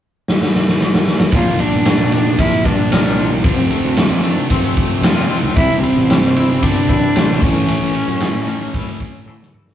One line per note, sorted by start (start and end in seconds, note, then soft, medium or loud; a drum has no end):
0.28 snare medium
0.41 snare medium
0.55 snare medium
0.68 snare medium
0.81 snare medium
0.94 snare medium
1.07 snare medium
1.20 snare loud
1.32 1.43 A#1 loud
1.32 2.37 A#2 medium
1.32 2.65 A#2 medium
1.32 2.39 F3 medium
1.32 2.38 A#3 loud
1.32 1.61 F4 loud
1.32 kick loud
1.32 ride medium
1.45 1.56 F1 medium
1.59 2.41 D4 loud
1.59 2.12 D4 medium
1.59 ride medium
1.72 1.93 G1 medium
1.85 3.18 A#3 medium
1.85 snare loud
1.85 ride medium
1.98 2.51 F1 medium
2.12 2.65 D4 medium
2.12 ride medium
2.38 3.42 A#2 medium
2.38 3.43 F3 medium
2.38 3.43 A#3 medium
2.38 2.68 E4 loud
2.38 3.17 F4 medium
2.38 kick medium
2.38 ride loud
2.65 2.75 G2 medium
2.65 3.45 D4 medium
2.65 3.44 D4 medium
2.65 kick medium
2.65 ride medium
2.91 3.46 C2 medium
2.91 3.45 A#4 medium
2.91 snare loud
2.91 ride loud
3.17 3.44 F4 medium
3.17 ride medium
3.43 3.55 F1 medium
3.43 4.48 F2 medium
3.43 4.77 F2 medium
3.43 4.49 C3 medium
3.43 4.49 F3 medium
3.43 3.69 C4 medium
3.43 kick loud
3.43 ride medium
3.57 3.68 F1 medium
3.71 4.23 A3 medium
3.71 4.26 C4 medium
3.71 ride medium
3.85 4.06 D2 medium
3.97 5.30 F3 medium
3.97 snare loud
3.97 ride medium
4.10 4.31 F2 medium
4.24 4.77 A3 medium
4.24 4.51 D4 medium
4.24 ride medium
4.49 5.54 F2 medium
4.49 5.54 C3 medium
4.49 5.55 F3 medium
4.49 5.30 C4 medium
4.49 5.27 C4 medium
4.49 kick medium
4.49 ride medium
4.77 5.57 A3 medium
4.77 kick medium
4.77 ride medium
5.02 5.24 F2 medium
5.02 5.57 F4 medium
5.02 snare loud
5.02 ride medium
5.30 5.57 C4 medium
5.30 ride medium
5.43 5.54 C#2 medium
5.55 5.67 C2 loud
5.55 6.60 C3 medium
5.55 6.89 C3 medium
5.55 6.61 G3 medium
5.55 6.61 C4 medium
5.55 5.81 E4 loud
5.55 kick loud
5.55 ride medium
5.69 5.80 G1 medium
5.83 6.64 C4 loud
5.83 6.36 E4 medium
5.83 ride medium
5.97 6.18 A1 medium
6.09 7.42 C4 medium
6.09 snare loud
6.09 ride medium
6.22 6.75 G1 medium
6.36 6.88 E4 medium
6.36 ride medium
6.61 7.40 C3 medium
6.61 7.40 G3 medium
6.61 7.41 C4 medium
6.61 7.44 D4 loud
6.61 7.42 G4 medium
6.61 kick medium
6.61 ride medium
6.89 7.00 A1 medium
6.89 7.95 E4 medium
6.89 kick medium
6.89 ride medium
7.15 7.36 A1 medium
7.15 7.42 C5 medium
7.15 snare loud
7.15 ride loud
7.41 7.74 A1 loud
7.41 8.46 A2 medium
7.41 7.68 A2 medium
7.41 8.46 E3 medium
7.41 8.46 A3 loud
7.41 9.27 C#4 loud
7.41 kick loud
7.41 ride medium
7.68 9.01 A2 medium
7.68 ride loud
7.81 7.92 A1 medium
7.94 8.47 C#4 medium
7.94 ride medium
8.08 8.29 F#2 medium
8.20 9.53 A3 medium
8.20 snare loud
8.20 ride medium
8.35 8.56 A2 medium
8.47 9.52 A2 medium
8.47 9.52 E3 medium
8.47 9.51 A3 medium
8.47 9.00 C#4 medium
8.47 ride medium
8.74 9.53 E4 medium
8.74 kick loud
8.74 ride loud
9.00 9.74 C#4 medium
9.00 kick medium
9.00 ride medium
9.26 9.48 A2 medium
9.26 9.74 A4 medium
9.26 high tom medium
9.42 snare medium
9.54 9.74 E4 medium
9.54 mid tom medium
9.66 9.74 A1 medium
9.66 snare medium